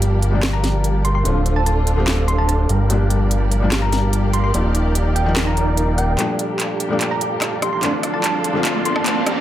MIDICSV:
0, 0, Header, 1, 8, 480
1, 0, Start_track
1, 0, Key_signature, -2, "minor"
1, 0, Tempo, 410959
1, 1466, Time_signature, 4, 2, 24, 8
1, 10986, End_track
2, 0, Start_track
2, 0, Title_t, "Synth pluck"
2, 0, Program_c, 0, 84
2, 622, Note_on_c, 0, 82, 83
2, 793, Note_off_c, 0, 82, 0
2, 1222, Note_on_c, 0, 84, 83
2, 1301, Note_off_c, 0, 84, 0
2, 1342, Note_on_c, 0, 84, 72
2, 1420, Note_off_c, 0, 84, 0
2, 1824, Note_on_c, 0, 81, 90
2, 1902, Note_off_c, 0, 81, 0
2, 1944, Note_on_c, 0, 81, 74
2, 2022, Note_off_c, 0, 81, 0
2, 2661, Note_on_c, 0, 84, 84
2, 2760, Note_off_c, 0, 84, 0
2, 2785, Note_on_c, 0, 81, 82
2, 2862, Note_off_c, 0, 81, 0
2, 2903, Note_on_c, 0, 81, 72
2, 2982, Note_off_c, 0, 81, 0
2, 4462, Note_on_c, 0, 82, 84
2, 4633, Note_off_c, 0, 82, 0
2, 5062, Note_on_c, 0, 84, 85
2, 5141, Note_off_c, 0, 84, 0
2, 5182, Note_on_c, 0, 84, 77
2, 5261, Note_off_c, 0, 84, 0
2, 6023, Note_on_c, 0, 79, 84
2, 6102, Note_off_c, 0, 79, 0
2, 6147, Note_on_c, 0, 79, 74
2, 6223, Note_off_c, 0, 79, 0
2, 6387, Note_on_c, 0, 82, 87
2, 6962, Note_off_c, 0, 82, 0
2, 6984, Note_on_c, 0, 79, 87
2, 7225, Note_off_c, 0, 79, 0
2, 8306, Note_on_c, 0, 82, 90
2, 8475, Note_off_c, 0, 82, 0
2, 8906, Note_on_c, 0, 84, 84
2, 8983, Note_off_c, 0, 84, 0
2, 9025, Note_on_c, 0, 84, 77
2, 9102, Note_off_c, 0, 84, 0
2, 9504, Note_on_c, 0, 81, 86
2, 9581, Note_off_c, 0, 81, 0
2, 9623, Note_on_c, 0, 81, 74
2, 9702, Note_off_c, 0, 81, 0
2, 10346, Note_on_c, 0, 84, 88
2, 10442, Note_off_c, 0, 84, 0
2, 10467, Note_on_c, 0, 81, 84
2, 10543, Note_off_c, 0, 81, 0
2, 10585, Note_on_c, 0, 81, 76
2, 10663, Note_off_c, 0, 81, 0
2, 10986, End_track
3, 0, Start_track
3, 0, Title_t, "Supersaw synth"
3, 0, Program_c, 1, 81
3, 0, Note_on_c, 1, 55, 84
3, 0, Note_on_c, 1, 67, 74
3, 0, Note_on_c, 1, 70, 75
3, 0, Note_on_c, 1, 77, 75
3, 0, Note_on_c, 1, 81, 87
3, 475, Note_off_c, 1, 55, 0
3, 475, Note_off_c, 1, 67, 0
3, 475, Note_off_c, 1, 70, 0
3, 475, Note_off_c, 1, 77, 0
3, 475, Note_off_c, 1, 81, 0
3, 503, Note_on_c, 1, 67, 81
3, 504, Note_on_c, 1, 55, 89
3, 504, Note_on_c, 1, 70, 84
3, 504, Note_on_c, 1, 77, 82
3, 1200, Note_off_c, 1, 67, 0
3, 1201, Note_off_c, 1, 55, 0
3, 1201, Note_off_c, 1, 70, 0
3, 1201, Note_off_c, 1, 77, 0
3, 1222, Note_on_c, 1, 67, 83
3, 1222, Note_on_c, 1, 70, 83
3, 1222, Note_on_c, 1, 77, 83
3, 1222, Note_on_c, 1, 82, 97
3, 1223, Note_on_c, 1, 55, 90
3, 1435, Note_off_c, 1, 67, 0
3, 1435, Note_off_c, 1, 70, 0
3, 1435, Note_off_c, 1, 77, 0
3, 1435, Note_off_c, 1, 82, 0
3, 1436, Note_off_c, 1, 55, 0
3, 1464, Note_on_c, 1, 62, 82
3, 1464, Note_on_c, 1, 72, 75
3, 1464, Note_on_c, 1, 86, 91
3, 1465, Note_on_c, 1, 69, 74
3, 1465, Note_on_c, 1, 77, 74
3, 2396, Note_off_c, 1, 62, 0
3, 2396, Note_off_c, 1, 69, 0
3, 2396, Note_off_c, 1, 72, 0
3, 2396, Note_off_c, 1, 86, 0
3, 2397, Note_off_c, 1, 77, 0
3, 2423, Note_on_c, 1, 69, 86
3, 2423, Note_on_c, 1, 72, 82
3, 2424, Note_on_c, 1, 77, 87
3, 2424, Note_on_c, 1, 86, 104
3, 2425, Note_on_c, 1, 62, 95
3, 3121, Note_off_c, 1, 62, 0
3, 3121, Note_off_c, 1, 69, 0
3, 3121, Note_off_c, 1, 72, 0
3, 3121, Note_off_c, 1, 77, 0
3, 3121, Note_off_c, 1, 86, 0
3, 3143, Note_on_c, 1, 55, 92
3, 3143, Note_on_c, 1, 77, 80
3, 3144, Note_on_c, 1, 67, 85
3, 3144, Note_on_c, 1, 70, 83
3, 3144, Note_on_c, 1, 82, 99
3, 3356, Note_off_c, 1, 55, 0
3, 3356, Note_off_c, 1, 67, 0
3, 3356, Note_off_c, 1, 70, 0
3, 3356, Note_off_c, 1, 77, 0
3, 3356, Note_off_c, 1, 82, 0
3, 3383, Note_on_c, 1, 55, 81
3, 3383, Note_on_c, 1, 67, 75
3, 3383, Note_on_c, 1, 70, 75
3, 3383, Note_on_c, 1, 77, 71
3, 3384, Note_on_c, 1, 81, 90
3, 4316, Note_off_c, 1, 55, 0
3, 4316, Note_off_c, 1, 67, 0
3, 4316, Note_off_c, 1, 70, 0
3, 4316, Note_off_c, 1, 77, 0
3, 4316, Note_off_c, 1, 81, 0
3, 4343, Note_on_c, 1, 55, 91
3, 4343, Note_on_c, 1, 67, 81
3, 4343, Note_on_c, 1, 70, 85
3, 4343, Note_on_c, 1, 77, 84
3, 4343, Note_on_c, 1, 81, 99
3, 5040, Note_off_c, 1, 67, 0
3, 5040, Note_off_c, 1, 70, 0
3, 5040, Note_off_c, 1, 81, 0
3, 5041, Note_off_c, 1, 55, 0
3, 5041, Note_off_c, 1, 77, 0
3, 5064, Note_on_c, 1, 70, 82
3, 5064, Note_on_c, 1, 77, 82
3, 5065, Note_on_c, 1, 55, 85
3, 5065, Note_on_c, 1, 67, 82
3, 5065, Note_on_c, 1, 82, 101
3, 5276, Note_off_c, 1, 67, 0
3, 5276, Note_off_c, 1, 70, 0
3, 5276, Note_off_c, 1, 77, 0
3, 5277, Note_off_c, 1, 55, 0
3, 5277, Note_off_c, 1, 82, 0
3, 5304, Note_on_c, 1, 74, 79
3, 5305, Note_on_c, 1, 63, 82
3, 5305, Note_on_c, 1, 79, 92
3, 5306, Note_on_c, 1, 70, 73
3, 5306, Note_on_c, 1, 77, 74
3, 6236, Note_off_c, 1, 74, 0
3, 6236, Note_off_c, 1, 79, 0
3, 6237, Note_off_c, 1, 63, 0
3, 6237, Note_off_c, 1, 70, 0
3, 6237, Note_off_c, 1, 77, 0
3, 6265, Note_on_c, 1, 63, 99
3, 6265, Note_on_c, 1, 70, 87
3, 6265, Note_on_c, 1, 74, 86
3, 6265, Note_on_c, 1, 79, 104
3, 6481, Note_off_c, 1, 63, 0
3, 6481, Note_off_c, 1, 70, 0
3, 6481, Note_off_c, 1, 79, 0
3, 6482, Note_off_c, 1, 74, 0
3, 6503, Note_on_c, 1, 70, 95
3, 6503, Note_on_c, 1, 77, 92
3, 6504, Note_on_c, 1, 63, 97
3, 6504, Note_on_c, 1, 74, 92
3, 6504, Note_on_c, 1, 79, 104
3, 7196, Note_off_c, 1, 63, 0
3, 7196, Note_off_c, 1, 70, 0
3, 7196, Note_off_c, 1, 74, 0
3, 7196, Note_off_c, 1, 77, 0
3, 7196, Note_off_c, 1, 79, 0
3, 7224, Note_on_c, 1, 67, 83
3, 7225, Note_on_c, 1, 81, 75
3, 7225, Note_on_c, 1, 82, 90
3, 8156, Note_off_c, 1, 67, 0
3, 8156, Note_off_c, 1, 81, 0
3, 8156, Note_off_c, 1, 82, 0
3, 8184, Note_on_c, 1, 67, 97
3, 8184, Note_on_c, 1, 74, 86
3, 8184, Note_on_c, 1, 77, 87
3, 8184, Note_on_c, 1, 81, 86
3, 8184, Note_on_c, 1, 82, 106
3, 8881, Note_off_c, 1, 67, 0
3, 8881, Note_off_c, 1, 74, 0
3, 8881, Note_off_c, 1, 77, 0
3, 8881, Note_off_c, 1, 81, 0
3, 8881, Note_off_c, 1, 82, 0
3, 8905, Note_on_c, 1, 67, 90
3, 8905, Note_on_c, 1, 74, 81
3, 8905, Note_on_c, 1, 77, 83
3, 8905, Note_on_c, 1, 82, 100
3, 8906, Note_on_c, 1, 81, 82
3, 9117, Note_off_c, 1, 67, 0
3, 9117, Note_off_c, 1, 74, 0
3, 9117, Note_off_c, 1, 77, 0
3, 9117, Note_off_c, 1, 81, 0
3, 9117, Note_off_c, 1, 82, 0
3, 9144, Note_on_c, 1, 62, 89
3, 9144, Note_on_c, 1, 74, 77
3, 9144, Note_on_c, 1, 84, 93
3, 9145, Note_on_c, 1, 77, 76
3, 9145, Note_on_c, 1, 81, 79
3, 10076, Note_off_c, 1, 62, 0
3, 10076, Note_off_c, 1, 74, 0
3, 10076, Note_off_c, 1, 77, 0
3, 10076, Note_off_c, 1, 84, 0
3, 10077, Note_off_c, 1, 81, 0
3, 10101, Note_on_c, 1, 62, 99
3, 10101, Note_on_c, 1, 77, 86
3, 10101, Note_on_c, 1, 81, 85
3, 10101, Note_on_c, 1, 84, 105
3, 10102, Note_on_c, 1, 74, 91
3, 10799, Note_off_c, 1, 62, 0
3, 10799, Note_off_c, 1, 77, 0
3, 10799, Note_off_c, 1, 81, 0
3, 10800, Note_off_c, 1, 74, 0
3, 10800, Note_off_c, 1, 84, 0
3, 10821, Note_on_c, 1, 67, 96
3, 10821, Note_on_c, 1, 74, 89
3, 10821, Note_on_c, 1, 77, 84
3, 10821, Note_on_c, 1, 82, 105
3, 10822, Note_on_c, 1, 81, 87
3, 10986, Note_off_c, 1, 67, 0
3, 10986, Note_off_c, 1, 74, 0
3, 10986, Note_off_c, 1, 77, 0
3, 10986, Note_off_c, 1, 81, 0
3, 10986, Note_off_c, 1, 82, 0
3, 10986, End_track
4, 0, Start_track
4, 0, Title_t, "String section"
4, 0, Program_c, 2, 48
4, 0, Note_on_c, 2, 53, 74
4, 0, Note_on_c, 2, 67, 83
4, 0, Note_on_c, 2, 74, 71
4, 1420, Note_off_c, 2, 74, 0
4, 1426, Note_off_c, 2, 67, 0
4, 1446, Note_off_c, 2, 53, 0
4, 1466, Note_on_c, 2, 50, 76
4, 1466, Note_on_c, 2, 60, 70
4, 1466, Note_on_c, 2, 65, 82
4, 1468, Note_on_c, 2, 57, 71
4, 3129, Note_off_c, 2, 50, 0
4, 3129, Note_off_c, 2, 60, 0
4, 3129, Note_off_c, 2, 65, 0
4, 3130, Note_off_c, 2, 57, 0
4, 3147, Note_on_c, 2, 53, 80
4, 3147, Note_on_c, 2, 67, 89
4, 3147, Note_on_c, 2, 74, 70
4, 5284, Note_off_c, 2, 53, 0
4, 5307, Note_on_c, 2, 51, 80
4, 7186, Note_off_c, 2, 67, 0
4, 7186, Note_off_c, 2, 74, 0
4, 7207, Note_off_c, 2, 51, 0
4, 7224, Note_on_c, 2, 67, 88
4, 7225, Note_on_c, 2, 53, 78
4, 7226, Note_on_c, 2, 62, 74
4, 9126, Note_off_c, 2, 62, 0
4, 9126, Note_off_c, 2, 67, 0
4, 9144, Note_on_c, 2, 69, 92
4, 9145, Note_on_c, 2, 60, 76
4, 9146, Note_on_c, 2, 62, 72
4, 10808, Note_off_c, 2, 60, 0
4, 10808, Note_off_c, 2, 69, 0
4, 10823, Note_on_c, 2, 67, 94
4, 10986, Note_off_c, 2, 53, 0
4, 10986, Note_off_c, 2, 62, 0
4, 10986, Note_off_c, 2, 67, 0
4, 10986, End_track
5, 0, Start_track
5, 0, Title_t, "Felt piano"
5, 0, Program_c, 3, 0
5, 0, Control_c, 3, 64, 127
5, 0, Note_on_c, 3, 46, 78
5, 0, Note_on_c, 3, 53, 74
5, 0, Note_on_c, 3, 55, 75
5, 0, Note_on_c, 3, 62, 87
5, 345, Note_off_c, 3, 46, 0
5, 351, Note_off_c, 3, 53, 0
5, 358, Note_off_c, 3, 55, 0
5, 363, Note_on_c, 3, 46, 86
5, 369, Note_off_c, 3, 62, 0
5, 375, Note_on_c, 3, 53, 76
5, 386, Note_on_c, 3, 55, 77
5, 410, Note_on_c, 3, 62, 92
5, 1425, Note_off_c, 3, 46, 0
5, 1431, Note_off_c, 3, 53, 0
5, 1437, Note_off_c, 3, 55, 0
5, 1443, Note_on_c, 3, 50, 82
5, 1449, Note_off_c, 3, 62, 0
5, 1455, Note_on_c, 3, 53, 73
5, 1466, Note_on_c, 3, 57, 73
5, 1477, Note_on_c, 3, 60, 70
5, 1482, Control_c, 3, 64, 0
5, 1488, Note_on_c, 3, 65, 87
5, 1669, Control_c, 3, 64, 127
5, 2266, Note_off_c, 3, 50, 0
5, 2272, Note_off_c, 3, 53, 0
5, 2278, Note_off_c, 3, 57, 0
5, 2283, Note_off_c, 3, 60, 0
5, 2284, Note_on_c, 3, 50, 91
5, 2289, Note_off_c, 3, 65, 0
5, 2295, Note_on_c, 3, 53, 84
5, 2308, Note_on_c, 3, 57, 83
5, 2319, Note_on_c, 3, 60, 85
5, 2331, Note_on_c, 3, 67, 99
5, 3120, Note_off_c, 3, 50, 0
5, 3126, Note_off_c, 3, 53, 0
5, 3132, Note_off_c, 3, 57, 0
5, 3137, Note_off_c, 3, 60, 0
5, 3143, Note_off_c, 3, 67, 0
5, 3158, Control_c, 3, 64, 0
5, 3363, Note_on_c, 3, 46, 84
5, 3374, Note_on_c, 3, 53, 74
5, 3385, Note_on_c, 3, 55, 76
5, 3398, Control_c, 3, 64, 127
5, 3409, Note_on_c, 3, 62, 94
5, 4186, Note_off_c, 3, 46, 0
5, 4192, Note_off_c, 3, 53, 0
5, 4197, Note_off_c, 3, 55, 0
5, 4203, Note_on_c, 3, 46, 82
5, 4209, Note_off_c, 3, 62, 0
5, 4215, Note_on_c, 3, 53, 76
5, 4226, Note_on_c, 3, 55, 78
5, 4250, Note_on_c, 3, 62, 93
5, 5265, Note_off_c, 3, 46, 0
5, 5265, Note_off_c, 3, 53, 0
5, 5277, Note_off_c, 3, 55, 0
5, 5283, Note_on_c, 3, 53, 77
5, 5289, Note_off_c, 3, 62, 0
5, 5295, Note_on_c, 3, 58, 72
5, 5307, Note_on_c, 3, 74, 74
5, 5317, Note_on_c, 3, 63, 72
5, 5321, Control_c, 3, 64, 0
5, 5330, Note_on_c, 3, 67, 87
5, 5501, Control_c, 3, 64, 127
5, 6106, Note_off_c, 3, 53, 0
5, 6112, Note_off_c, 3, 58, 0
5, 6118, Note_off_c, 3, 74, 0
5, 6123, Note_off_c, 3, 63, 0
5, 6124, Note_on_c, 3, 53, 92
5, 6129, Note_off_c, 3, 67, 0
5, 6136, Note_on_c, 3, 58, 84
5, 6148, Note_on_c, 3, 74, 82
5, 6159, Note_on_c, 3, 63, 86
5, 6172, Note_on_c, 3, 70, 102
5, 7186, Note_off_c, 3, 53, 0
5, 7192, Note_off_c, 3, 58, 0
5, 7198, Note_off_c, 3, 74, 0
5, 7203, Note_off_c, 3, 63, 0
5, 7203, Note_on_c, 3, 46, 86
5, 7209, Note_off_c, 3, 70, 0
5, 7215, Note_on_c, 3, 53, 80
5, 7227, Note_on_c, 3, 55, 76
5, 7239, Note_on_c, 3, 57, 76
5, 7243, Control_c, 3, 64, 0
5, 7250, Note_on_c, 3, 62, 88
5, 7456, Control_c, 3, 64, 127
5, 8026, Note_off_c, 3, 46, 0
5, 8032, Note_off_c, 3, 53, 0
5, 8038, Note_off_c, 3, 55, 0
5, 8043, Note_on_c, 3, 46, 91
5, 8044, Note_off_c, 3, 57, 0
5, 8050, Note_off_c, 3, 62, 0
5, 8055, Note_on_c, 3, 53, 80
5, 8066, Note_on_c, 3, 55, 77
5, 8078, Note_on_c, 3, 57, 81
5, 8090, Note_on_c, 3, 62, 97
5, 9105, Note_off_c, 3, 46, 0
5, 9111, Note_off_c, 3, 53, 0
5, 9117, Note_off_c, 3, 55, 0
5, 9122, Note_on_c, 3, 50, 83
5, 9123, Note_off_c, 3, 57, 0
5, 9129, Note_off_c, 3, 62, 0
5, 9133, Note_on_c, 3, 53, 75
5, 9146, Note_on_c, 3, 57, 71
5, 9157, Note_on_c, 3, 60, 78
5, 9161, Control_c, 3, 64, 0
5, 9169, Note_on_c, 3, 62, 92
5, 9339, Control_c, 3, 64, 127
5, 9944, Note_off_c, 3, 50, 0
5, 9951, Note_off_c, 3, 53, 0
5, 9957, Note_off_c, 3, 57, 0
5, 9962, Note_on_c, 3, 50, 98
5, 9963, Note_off_c, 3, 60, 0
5, 9969, Note_off_c, 3, 62, 0
5, 9974, Note_on_c, 3, 53, 88
5, 9985, Note_on_c, 3, 57, 83
5, 9997, Note_on_c, 3, 60, 91
5, 10009, Note_on_c, 3, 65, 109
5, 10799, Note_off_c, 3, 50, 0
5, 10805, Note_off_c, 3, 53, 0
5, 10811, Note_off_c, 3, 57, 0
5, 10816, Note_off_c, 3, 60, 0
5, 10823, Note_off_c, 3, 65, 0
5, 10840, Control_c, 3, 64, 0
5, 10986, End_track
6, 0, Start_track
6, 0, Title_t, "Analog synth bass"
6, 0, Program_c, 4, 38
6, 0, Note_on_c, 4, 31, 76
6, 1441, Note_off_c, 4, 31, 0
6, 1467, Note_on_c, 4, 26, 77
6, 3122, Note_off_c, 4, 26, 0
6, 3147, Note_on_c, 4, 31, 86
6, 5283, Note_off_c, 4, 31, 0
6, 5306, Note_on_c, 4, 27, 82
6, 7202, Note_off_c, 4, 27, 0
6, 7226, Note_on_c, 4, 31, 86
6, 8162, Note_off_c, 4, 31, 0
6, 8185, Note_on_c, 4, 31, 91
6, 8904, Note_on_c, 4, 43, 95
6, 8921, Note_off_c, 4, 31, 0
6, 9121, Note_off_c, 4, 43, 0
6, 9143, Note_on_c, 4, 26, 92
6, 10081, Note_off_c, 4, 26, 0
6, 10823, Note_on_c, 4, 31, 98
6, 10986, Note_off_c, 4, 31, 0
6, 10986, End_track
7, 0, Start_track
7, 0, Title_t, "Riser"
7, 0, Program_c, 5, 103
7, 7226, Note_on_c, 5, 60, 76
7, 10986, Note_off_c, 5, 60, 0
7, 10986, End_track
8, 0, Start_track
8, 0, Title_t, "Drums"
8, 23, Note_on_c, 9, 42, 67
8, 140, Note_off_c, 9, 42, 0
8, 263, Note_on_c, 9, 42, 58
8, 380, Note_off_c, 9, 42, 0
8, 504, Note_on_c, 9, 38, 113
8, 504, Note_on_c, 9, 39, 84
8, 504, Note_on_c, 9, 42, 69
8, 620, Note_off_c, 9, 38, 0
8, 620, Note_off_c, 9, 39, 0
8, 620, Note_off_c, 9, 42, 0
8, 744, Note_on_c, 9, 38, 55
8, 744, Note_on_c, 9, 42, 56
8, 861, Note_off_c, 9, 38, 0
8, 861, Note_off_c, 9, 42, 0
8, 983, Note_on_c, 9, 42, 68
8, 1100, Note_off_c, 9, 42, 0
8, 1224, Note_on_c, 9, 42, 60
8, 1341, Note_off_c, 9, 42, 0
8, 1463, Note_on_c, 9, 42, 68
8, 1580, Note_off_c, 9, 42, 0
8, 1703, Note_on_c, 9, 42, 57
8, 1820, Note_off_c, 9, 42, 0
8, 1943, Note_on_c, 9, 42, 69
8, 2060, Note_off_c, 9, 42, 0
8, 2183, Note_on_c, 9, 42, 62
8, 2300, Note_off_c, 9, 42, 0
8, 2425, Note_on_c, 9, 38, 101
8, 2425, Note_on_c, 9, 39, 86
8, 2425, Note_on_c, 9, 42, 71
8, 2542, Note_off_c, 9, 38, 0
8, 2542, Note_off_c, 9, 39, 0
8, 2542, Note_off_c, 9, 42, 0
8, 2666, Note_on_c, 9, 42, 57
8, 2782, Note_off_c, 9, 42, 0
8, 2906, Note_on_c, 9, 42, 71
8, 3023, Note_off_c, 9, 42, 0
8, 3146, Note_on_c, 9, 42, 62
8, 3263, Note_off_c, 9, 42, 0
8, 3386, Note_on_c, 9, 42, 74
8, 3503, Note_off_c, 9, 42, 0
8, 3625, Note_on_c, 9, 42, 60
8, 3742, Note_off_c, 9, 42, 0
8, 3865, Note_on_c, 9, 42, 70
8, 3982, Note_off_c, 9, 42, 0
8, 4106, Note_on_c, 9, 42, 61
8, 4223, Note_off_c, 9, 42, 0
8, 4344, Note_on_c, 9, 38, 100
8, 4344, Note_on_c, 9, 39, 88
8, 4344, Note_on_c, 9, 42, 80
8, 4461, Note_off_c, 9, 38, 0
8, 4461, Note_off_c, 9, 39, 0
8, 4461, Note_off_c, 9, 42, 0
8, 4584, Note_on_c, 9, 38, 52
8, 4584, Note_on_c, 9, 42, 58
8, 4701, Note_off_c, 9, 38, 0
8, 4701, Note_off_c, 9, 42, 0
8, 4824, Note_on_c, 9, 42, 77
8, 4941, Note_off_c, 9, 42, 0
8, 5063, Note_on_c, 9, 42, 64
8, 5180, Note_off_c, 9, 42, 0
8, 5304, Note_on_c, 9, 42, 75
8, 5421, Note_off_c, 9, 42, 0
8, 5544, Note_on_c, 9, 42, 60
8, 5661, Note_off_c, 9, 42, 0
8, 5785, Note_on_c, 9, 42, 76
8, 5902, Note_off_c, 9, 42, 0
8, 6026, Note_on_c, 9, 42, 63
8, 6143, Note_off_c, 9, 42, 0
8, 6266, Note_on_c, 9, 38, 111
8, 6266, Note_on_c, 9, 39, 90
8, 6266, Note_on_c, 9, 42, 78
8, 6383, Note_off_c, 9, 38, 0
8, 6383, Note_off_c, 9, 39, 0
8, 6383, Note_off_c, 9, 42, 0
8, 6506, Note_on_c, 9, 42, 61
8, 6623, Note_off_c, 9, 42, 0
8, 6744, Note_on_c, 9, 42, 79
8, 6861, Note_off_c, 9, 42, 0
8, 6985, Note_on_c, 9, 42, 65
8, 7101, Note_off_c, 9, 42, 0
8, 7225, Note_on_c, 9, 39, 47
8, 7225, Note_on_c, 9, 42, 77
8, 7342, Note_off_c, 9, 39, 0
8, 7342, Note_off_c, 9, 42, 0
8, 7465, Note_on_c, 9, 42, 61
8, 7582, Note_off_c, 9, 42, 0
8, 7704, Note_on_c, 9, 39, 45
8, 7704, Note_on_c, 9, 42, 75
8, 7821, Note_off_c, 9, 39, 0
8, 7821, Note_off_c, 9, 42, 0
8, 7943, Note_on_c, 9, 42, 65
8, 8060, Note_off_c, 9, 42, 0
8, 8184, Note_on_c, 9, 39, 53
8, 8184, Note_on_c, 9, 42, 79
8, 8301, Note_off_c, 9, 39, 0
8, 8301, Note_off_c, 9, 42, 0
8, 8423, Note_on_c, 9, 42, 66
8, 8540, Note_off_c, 9, 42, 0
8, 8664, Note_on_c, 9, 37, 72
8, 8664, Note_on_c, 9, 39, 51
8, 8664, Note_on_c, 9, 42, 75
8, 8780, Note_off_c, 9, 37, 0
8, 8780, Note_off_c, 9, 39, 0
8, 8780, Note_off_c, 9, 42, 0
8, 8903, Note_on_c, 9, 37, 72
8, 8903, Note_on_c, 9, 42, 66
8, 9020, Note_off_c, 9, 37, 0
8, 9020, Note_off_c, 9, 42, 0
8, 9143, Note_on_c, 9, 39, 54
8, 9143, Note_on_c, 9, 42, 78
8, 9260, Note_off_c, 9, 39, 0
8, 9260, Note_off_c, 9, 42, 0
8, 9383, Note_on_c, 9, 37, 55
8, 9383, Note_on_c, 9, 42, 63
8, 9500, Note_off_c, 9, 37, 0
8, 9500, Note_off_c, 9, 42, 0
8, 9623, Note_on_c, 9, 39, 61
8, 9623, Note_on_c, 9, 42, 73
8, 9740, Note_off_c, 9, 39, 0
8, 9740, Note_off_c, 9, 42, 0
8, 9862, Note_on_c, 9, 42, 66
8, 9979, Note_off_c, 9, 42, 0
8, 10101, Note_on_c, 9, 39, 67
8, 10101, Note_on_c, 9, 42, 78
8, 10218, Note_off_c, 9, 39, 0
8, 10218, Note_off_c, 9, 42, 0
8, 10341, Note_on_c, 9, 42, 62
8, 10458, Note_off_c, 9, 42, 0
8, 10462, Note_on_c, 9, 37, 71
8, 10579, Note_off_c, 9, 37, 0
8, 10582, Note_on_c, 9, 39, 70
8, 10582, Note_on_c, 9, 42, 80
8, 10699, Note_off_c, 9, 39, 0
8, 10699, Note_off_c, 9, 42, 0
8, 10822, Note_on_c, 9, 37, 73
8, 10822, Note_on_c, 9, 42, 68
8, 10938, Note_off_c, 9, 37, 0
8, 10938, Note_off_c, 9, 42, 0
8, 10986, End_track
0, 0, End_of_file